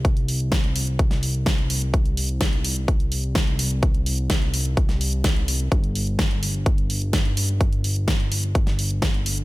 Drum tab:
HH |xxoxxxoxxxoxxxox|xxoxxxoxxxoxxxox|xxo-xxoxxxoxxxox|xxoxxxoxxxoxxxox|
SD |----o----o--o---|----o-------o---|----o----o--o---|----o-------o---|
BD |o---o---o---o---|o---o---o---o---|o---o---o---o---|o---o---o---o---|

HH |xxoxxxoxxxoxxxox|
SD |----o----o--o---|
BD |o---o---o---o---|